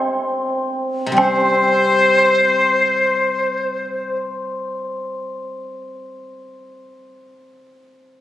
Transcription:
0.00 1.17 C4 soft
0.00 0.55 D4 medium
0.00 1.18 G4 soft
1.06 7.69 C3 medium
1.12 7.18 G3 medium
1.16 6.26 C4 medium
1.16 5.17 C4 medium
1.16 4.17 C5 loud
1.16 high woodblock medium

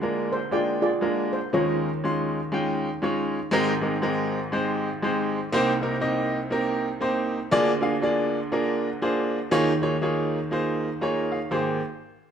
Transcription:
0.00 1.48 D2 medium
0.00 1.48 D3 medium
0.00 0.38 G#3 medium
0.00 0.38 A#3 medium
0.00 0.38 D4 medium
0.00 0.48 F4 medium
0.00 0.38 F4 medium
0.00 0.48 G#4 medium
0.00 0.39 A#4 medium
0.00 0.31 C5 loud
0.32 0.53 C5 medium
0.51 0.88 G#3 medium
0.51 0.88 A#3 medium
0.51 0.88 D4 medium
0.51 0.88 F4 medium
0.51 0.81 F4 medium
0.51 0.81 G#4 medium
0.51 0.81 D5 medium
0.51 0.89 G5 medium
0.82 1.48 F4 medium
0.82 1.48 G#4 medium
0.82 1.29 D5 medium
1.01 1.38 G#3 medium
1.01 1.38 A#3 medium
1.01 1.38 D4 medium
1.01 1.38 F4 medium
1.01 1.38 A#4 medium
1.33 1.53 C5 medium
1.53 3.49 D#2 medium
1.53 3.48 D#3 medium
1.53 1.88 G#3 medium
1.53 1.88 C#4 medium
1.53 1.89 D#4 medium
1.53 1.89 F4 medium
1.53 2.99 F4 medium
1.53 2.99 G#4 medium
1.53 1.89 A#4 medium
1.53 2.99 C#5 medium
2.04 2.39 G#3 medium
2.04 2.39 C#4 medium
2.04 2.39 D#4 medium
2.04 2.39 F4 medium
2.04 2.39 C6 medium
2.52 2.88 G#3 medium
2.52 2.88 C#4 medium
2.52 2.88 D#4 medium
2.52 2.88 F4 medium
2.52 2.89 G5 medium
3.02 3.38 G#3 medium
3.02 3.38 C#4 medium
3.02 3.38 D#4 medium
3.02 3.38 F4 medium
3.02 3.39 C#5 loud
3.51 5.48 G#1 medium
3.51 5.48 G#2 medium
3.51 3.71 G#3 loud
3.51 3.71 C4 loud
3.51 3.72 D#4 loud
3.51 3.72 G4 loud
3.51 3.72 A#4 loud
3.81 3.95 G#3 medium
3.81 3.95 C4 medium
3.81 3.95 D#4 medium
3.81 3.95 G4 medium
3.81 3.95 A#4 medium
4.02 4.38 G#3 medium
4.02 4.38 C4 medium
4.02 4.38 D#4 medium
4.02 4.38 G4 medium
4.02 4.38 A#4 loud
4.52 4.88 G#3 medium
4.52 4.88 C4 medium
4.52 4.88 D#4 medium
4.52 4.88 G4 medium
4.52 4.88 C5 loud
5.02 5.38 G#3 medium
5.02 5.38 C4 medium
5.02 5.38 D#4 medium
5.02 5.39 G4 medium
5.02 5.39 C5 loud
5.52 7.48 C2 medium
5.52 7.48 C3 medium
5.52 5.71 A#3 loud
5.52 5.72 C4 loud
5.52 5.72 D#4 loud
5.52 5.72 G4 loud
5.52 5.72 C5 loud
5.81 5.95 A#3 medium
5.81 5.95 C4 medium
5.81 5.95 D#4 medium
5.81 5.95 G4 medium
5.81 5.95 A#4 medium
6.00 6.37 A#3 medium
6.00 6.37 C4 medium
6.00 6.37 D#4 medium
6.00 6.38 G4 medium
6.00 6.38 D#5 loud
6.50 6.87 A#3 medium
6.50 6.87 C4 medium
6.50 6.87 D#4 medium
6.50 6.88 G4 medium
6.50 6.88 A#4 loud
7.01 7.37 A#3 medium
7.01 7.37 C4 medium
7.01 7.37 D#4 medium
7.01 7.38 G4 medium
7.01 7.38 C5 loud
7.51 9.48 D2 medium
7.51 9.48 D3 medium
7.51 7.71 A#3 loud
7.51 7.71 D4 loud
7.51 7.71 F4 loud
7.51 7.72 G#4 loud
7.51 7.71 D5 loud
7.81 7.94 A#3 medium
7.81 7.94 D4 medium
7.81 7.95 F4 medium
7.81 7.95 G#4 medium
7.81 7.95 F5 medium
8.02 8.38 A#3 medium
8.02 8.38 D4 medium
8.02 8.38 F4 medium
8.02 8.38 G#4 medium
8.02 8.38 D5 loud
8.52 8.88 A#3 medium
8.52 8.88 D4 medium
8.52 8.88 F4 medium
8.52 8.88 G#4 medium
8.52 8.88 A#4 loud
9.02 9.38 A#3 medium
9.02 9.38 D4 medium
9.02 9.38 F4 medium
9.02 9.38 G#4 medium
9.02 9.38 C5 loud
9.51 11.48 D#2 medium
9.51 11.48 D#3 medium
9.51 9.71 A#3 loud
9.51 9.71 D#4 loud
9.51 9.71 F4 loud
9.51 9.71 G#4 loud
9.51 9.71 C#5 loud
9.82 9.95 A#3 medium
9.82 9.95 D#4 medium
9.82 9.95 F4 medium
9.82 9.95 G#4 medium
9.82 9.95 C#5 loud
10.01 10.38 A#3 medium
10.01 10.38 D#4 medium
10.01 10.38 F4 medium
10.01 10.38 G#4 medium
10.01 10.38 C#5 medium
10.51 10.87 A#3 medium
10.51 10.88 D#4 medium
10.51 10.88 F4 medium
10.51 10.88 G#4 medium
10.51 10.88 C5 loud
11.01 11.38 A#3 medium
11.01 11.38 D#4 medium
11.01 11.38 F4 medium
11.01 11.38 G#4 medium
11.01 11.39 C#5 loud
11.01 11.30 A#5 medium
11.32 11.51 F5 medium
11.51 11.79 G#1 medium
11.51 11.79 A#3 medium
11.51 11.80 G4 medium
11.51 11.80 G#4 medium
11.51 11.80 C5 loud

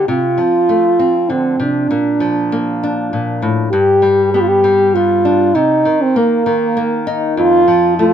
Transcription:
0.00 1.92 F4 medium
0.08 0.39 C3 medium
0.08 1.32 F4 medium
0.38 1.86 F3 soft
0.69 1.87 A3 soft
0.99 1.91 C4 soft
1.30 1.59 D3 soft
1.30 1.60 C4 medium
1.60 1.90 C3 medium
1.60 3.09 D4 medium
1.91 3.12 A#2 medium
2.20 3.69 F3 soft
2.52 3.70 A#3 soft
2.83 3.70 D4 medium
3.13 3.43 A#2 soft
3.42 3.72 A2 medium
3.71 5.52 G2 medium
3.71 4.29 G4 medium
4.02 4.63 G3 soft
4.33 4.94 B3 soft
4.33 4.42 G4 medium
4.41 4.50 F4 medium
4.48 4.96 G4 medium
4.64 5.52 G3 medium
4.95 5.52 B3 soft
4.95 5.56 F4 medium
5.25 5.52 D4 soft
5.55 5.85 C3 medium
5.55 6.04 D#4 medium
5.85 6.45 D#3 soft
6.02 6.18 C4 medium
6.16 6.76 A#3 medium
6.16 7.08 A#3 medium
6.46 7.67 D#3 medium
6.77 7.34 A#3 soft
7.07 7.34 D#4 medium
7.37 8.13 F2 medium
7.37 7.94 F4 medium
7.68 8.13 F3 medium
7.98 8.13 A3 soft
7.98 8.13 F4 medium

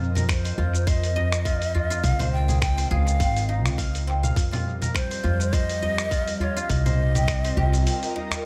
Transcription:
0.00 0.51 F2 loud
0.00 1.54 C4 medium
0.00 6.70 C4 loud
0.00 0.57 F4 medium
0.00 6.70 F4 medium
0.00 1.18 G4 medium
0.00 6.70 A#4 medium
0.00 0.44 C5 loud
0.00 6.70 D#5 medium
0.00 1.24 F5 medium
0.15 2.27 A#4 medium
0.15 open hi-hat soft
0.15 djembe slap soft
0.15 low conga medium
0.15 shaker medium
0.29 0.90 C5 medium
0.29 finger snap medium
0.29 kick loud
0.29 open hi-hat medium
0.29 shaker medium
0.45 0.86 C5 medium
0.45 open hi-hat soft
0.45 shaker soft
0.58 2.05 F2 medium
0.58 1.45 F4 medium
0.58 djembe bass loud
0.74 djembe slap medium
0.74 shaker medium
0.87 2.19 C5 loud
0.87 2.05 D#5 loud
0.87 kick loud
0.87 open hi-hat medium
0.87 djembe tone medium
0.87 shaker medium
1.03 open hi-hat soft
1.03 shaker soft
1.16 2.94 D#5 loud
1.16 djembe slap medium
1.16 djembe tone medium
1.32 finger snap medium
1.32 shaker medium
1.45 1.74 F4 medium
1.45 kick loud
1.45 open hi-hat medium
1.45 shaker medium
1.62 open hi-hat soft
1.62 djembe tone medium
1.62 shaker soft
1.74 1.90 F4 medium
1.74 djembe bass loud
1.90 4.43 F4 loud
1.90 shaker medium
2.04 2.84 C#2 loud
2.04 2.32 F5 loud
2.04 kick loud
2.04 open hi-hat medium
2.04 djembe tone medium
2.04 shaker medium
2.19 2.77 C5 loud
2.19 open hi-hat soft
2.19 djembe slap medium
2.19 low conga medium
2.19 shaker soft
2.32 2.60 G5 loud
2.48 2.90 G#4 medium
2.48 open hi-hat soft
2.48 low conga medium
2.48 shaker medium
2.62 2.89 G5 loud
2.62 finger snap medium
2.62 kick loud
2.62 open hi-hat medium
2.62 shaker soft
2.77 4.75 C5 medium
2.77 open hi-hat soft
2.77 shaker soft
2.91 3.22 C#2 loud
2.91 5.18 G#4 loud
2.91 3.75 F5 loud
2.91 djembe bass medium
3.07 djembe slap medium
3.07 shaker medium
3.20 3.65 G#1 medium
3.20 4.07 C4 medium
3.20 kick loud
3.20 open hi-hat medium
3.20 shaker medium
3.37 open hi-hat soft
3.37 shaker soft
3.49 6.19 D#4 medium
3.49 djembe slap medium
3.65 4.29 C#2 medium
3.65 finger snap medium
3.65 open hi-hat soft
3.65 djembe tone medium
3.65 shaker medium
3.78 4.23 F5 medium
3.78 kick medium
3.78 open hi-hat medium
3.78 shaker medium
3.94 open hi-hat soft
3.94 djembe slap soft
3.94 djembe tone medium
3.94 shaker soft
4.07 7.07 C4 medium
4.23 5.90 F5 loud
4.23 djembe tone soft
4.23 low conga medium
4.23 shaker medium
4.36 5.16 F2 loud
4.36 8.46 G3 medium
4.36 kick loud
4.36 open hi-hat medium
4.36 djembe tone medium
4.36 shaker medium
4.51 5.23 F4 medium
4.51 open hi-hat soft
4.51 djembe slap medium
4.51 low conga medium
4.51 shaker soft
4.82 6.94 A#4 medium
4.82 open hi-hat soft
4.82 djembe slap soft
4.82 low conga medium
4.82 shaker medium
4.95 5.55 C5 loud
4.95 finger snap medium
4.95 kick medium
4.95 open hi-hat medium
4.95 shaker medium
5.11 5.53 C5 medium
5.11 open hi-hat soft
5.11 shaker soft
5.23 6.62 F2 loud
5.23 6.11 F4 medium
5.23 djembe bass medium
5.40 djembe slap medium
5.40 shaker medium
5.53 6.85 C5 medium
5.53 6.41 D#5 loud
5.53 kick loud
5.53 open hi-hat medium
5.53 djembe tone medium
5.53 shaker medium
5.69 open hi-hat soft
5.69 shaker soft
5.82 7.61 D#5 medium
5.82 djembe slap medium
5.82 djembe tone medium
5.98 finger snap medium
5.98 shaker medium
6.11 6.40 F4 medium
6.11 kick loud
6.11 open hi-hat medium
6.11 shaker medium
6.28 open hi-hat soft
6.28 djembe tone medium
6.28 shaker soft
6.40 6.56 F4 medium
6.40 6.62 C#5 loud
6.40 djembe bass medium
6.56 8.46 F4 loud
6.56 shaker medium
6.62 6.71 F5 medium
6.69 7.50 C2 loud
6.69 8.44 D#5 loud
6.69 kick loud
6.69 open hi-hat medium
6.69 djembe tone medium
6.69 shaker medium
6.86 7.44 C5 loud
6.86 open hi-hat soft
6.86 djembe slap medium
6.86 low conga medium
6.86 shaker soft
7.10 8.46 C4 medium
7.15 7.57 G4 medium
7.15 open hi-hat soft
7.15 low conga medium
7.15 shaker medium
7.28 finger snap medium
7.28 kick loud
7.28 open hi-hat medium
7.28 shaker soft
7.33 8.46 F4 medium
7.44 8.46 C5 medium
7.44 open hi-hat soft
7.44 shaker soft
7.52 8.46 A#4 medium
7.57 7.86 C2 loud
7.57 8.46 G4 medium
7.57 djembe bass medium
7.73 8.46 D#5 medium
7.73 open hi-hat soft
7.73 djembe slap medium
7.73 shaker medium
7.86 8.46 C4 medium
7.86 open hi-hat medium
7.86 shaker medium
8.03 open hi-hat soft
8.03 shaker soft
8.16 8.46 D#4 medium
8.16 djembe slap medium
8.16 djembe tone medium
8.31 finger snap medium
8.31 open hi-hat soft
8.31 djembe tone medium
8.31 shaker medium

